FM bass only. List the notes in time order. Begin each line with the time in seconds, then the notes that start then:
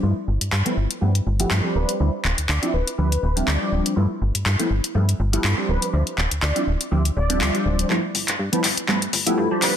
0.03 G2
0.28 G1
0.41 G2
0.52 G2
0.77 G1
1.02 G2
1.27 G1
1.51 G2
1.75 D1
2.00 D2
2.25 D1
2.38 D2
2.49 D2
2.74 D1
2.98 D2
3.23 D1
3.48 D2
3.72 D1
3.97 G2
4.22 G1
4.35 G2
4.46 G2
4.70 G1
4.95 G2
5.20 G1
5.44 G2
5.69 D1
5.93 D2
6.18 D1
6.31 D2
6.43 D2
6.67 D1
6.92 D2
7.17 D1
7.41 D2
7.66 D1
7.90 G2
8.15 G1
8.28 G2
8.39 G2
8.64 G1
8.88 G2
9.13 G1
9.38 G2
9.62 D1